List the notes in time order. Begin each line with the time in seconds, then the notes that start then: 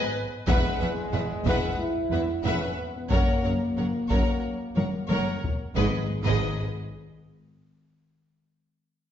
Already playing: B3 B4 D#5 G#5
0.47 E1 E2 G#3 B4 E5 F#5, taiko
0.79 E1 E2 B4 E5 F#5
1.13 E1 E2 B4 E5 F#5
1.45 E1 E2 B4 E5 F#5, taiko
1.78 E4
2.11 E1 E2 B4 E5 F#5
2.44 E1 E2 C#4 B4 E5 F#5
2.78 B3
2.95 B3
3.10 F#1 F#2 A#3 A#4 C#5 F#5, taiko
3.43 F#1 F#2 A#4 C#5 F#5
3.77 F#1 F#2 A#4 C#5 F#5
4.09 F#1 F#2 A#4 C#5 F#5, taiko
4.76 F#1 F#2 A#4 C#5 F#5, taiko high
5.09 F#1 F#2 A#4 C#5 F#5, taiko high
5.44 taiko low
5.76 G#1 G#2 G#3 G#4 B4 D#5, taiko
6.24 G#1 G#2 G#4 B4 D#5, taiko